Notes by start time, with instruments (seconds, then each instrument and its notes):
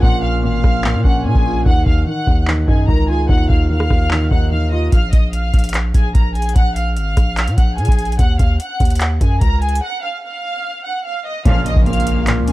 Already playing: grand piano A#2 C#4 F4
0.03 808-style bass A#1, grand piano A#2, violin section F#5 F#6, kick
0.23 violin section F5 F6
0.43 808-style bass G#1, grand piano A#2, violin section F5 F6
0.64 808-style bass A#1, kick, cross-stick
0.84 grand piano A#2, clap
0.94 808-style bass A#2
1.05 808-style bass A#1, grand piano C#4, violin section F#5 F#6, kick
1.25 808-style bass A#2, grand piano A#2, violin section G#4 G#5
1.35 808-style bass A#1, kick
1.46 grand piano F4
1.66 808-style bass D#2, grand piano D#3, violin section F#5 F#6, kick
1.86 808-style bass D#2, violin section F5 F6, kick
2.07 grand piano D#3, violin section F#5 F#6
2.27 808-style bass D#2, kick
2.48 grand piano D#3, clap
2.68 808-style bass F#2, grand piano D#4, violin section G#4 G#5, kick
2.88 808-style bass C#2, grand piano D#3, violin section A#4 A#5, kick
3.09 grand piano F4, violin section G#4 G#5
3.29 808-style bass D#2, grand piano D#3, violin section F#5 F#6, kick
3.49 808-style bass D#2, violin section F5 F6, kick
3.70 grand piano D#3, violin section F5 F6
3.80 cross-stick
3.90 808-style bass D#2, kick, cross-stick
4.11 grand piano D#3, clap
4.31 808-style bass D#2, grand piano D#4, violin section F#5 F#6, kick
4.52 grand piano D#3, violin section F5 F6
4.72 grand piano F4, violin section D#5 D#6
4.92 808-style bass A#1, violin section F5 F6, kick, closed hi-hat
5.13 808-style bass A#1, violin section D#5 D#6, kick, closed hi-hat
5.33 violin section F5 F6, closed hi-hat
5.54 808-style bass A#1, kick, closed hi-hat
5.59 closed hi-hat
5.64 closed hi-hat
5.69 closed hi-hat
5.74 clap, closed hi-hat
5.94 808-style bass A#1, violin section G#4 G#5, kick, closed hi-hat
6.15 808-style bass A#1, violin section A#4 A#5, kick, closed hi-hat
6.35 violin section G#4 G#5, closed hi-hat
6.42 closed hi-hat
6.49 closed hi-hat
6.56 808-style bass A#1, violin section F#5 F#6, kick, closed hi-hat
6.76 violin section F5 F6, closed hi-hat
6.96 808-style bass G#1, violin section F5 F6, closed hi-hat
7.17 808-style bass A#1, kick, cross-stick, closed hi-hat
7.37 clap, closed hi-hat
7.48 808-style bass A#2, closed hi-hat
7.58 808-style bass A#1, violin section F#5 F#6, kick, closed hi-hat
7.78 808-style bass A#2, violin section G#4 G#5, closed hi-hat
7.85 808-style bass A#1, kick, closed hi-hat
7.92 closed hi-hat
7.99 closed hi-hat
8.05 closed hi-hat
8.12 closed hi-hat
8.19 808-style bass D#2, violin section F#5 F#6, kick, closed hi-hat
8.39 808-style bass D#2, violin section F5 F6, kick, closed hi-hat
8.60 violin section F#5 F#6, closed hi-hat
8.80 808-style bass D#2, kick, closed hi-hat
8.85 closed hi-hat
8.90 closed hi-hat
8.95 closed hi-hat
9.01 clap, closed hi-hat
9.21 808-style bass F#2, violin section G#4 G#5, kick, closed hi-hat
9.41 808-style bass C#2, violin section A#4 A#5, kick, closed hi-hat
9.62 violin section G#4 G#5, closed hi-hat
9.69 closed hi-hat
9.75 closed hi-hat
9.83 violin section F#5 F#6
10.02 violin section F5 F6
10.23 violin section F5 F6
10.84 violin section F#5 F#6
11.05 violin section F5 F6
11.25 violin section D#5 D#6
11.45 808-style bass A#1, string section A#2 C#3 F3, grand piano A#2, pipe organ C#3 F3 A#3 F4, violin section F5 F6, kick, closed hi-hat, impact
11.66 violin section D#5 D#6, closed hi-hat
11.76 808-style bass A#1, kick
11.86 grand piano A#2, violin section F5 F6, closed hi-hat
11.93 closed hi-hat
12.00 closed hi-hat
12.07 closed hi-hat
12.27 grand piano A#2, clap, closed hi-hat
12.37 808-style bass C#2
12.48 grand piano C#4, violin section G#4 G#5, closed hi-hat